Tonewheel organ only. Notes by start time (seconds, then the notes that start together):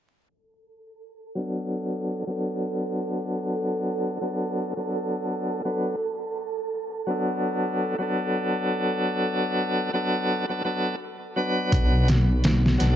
1.35 F#3 B3 D4 A4
2.27 F#3 B3 D4 A4
4.21 F#3 B3 D4 A4
4.77 F#3 B3 D4 A4
5.65 F#3 B3 D4 B4
7.07 F#3 B3 D4 A4
7.99 F#3 B3 D4
8.03 A4
9.93 F#3 B3 D4 A4
10.49 F#3 B3 D4 A4
10.65 F#3 B3 D4 A4
11.36 F#3 B3 D4 B4
12.78 F#3 B3 D4 A4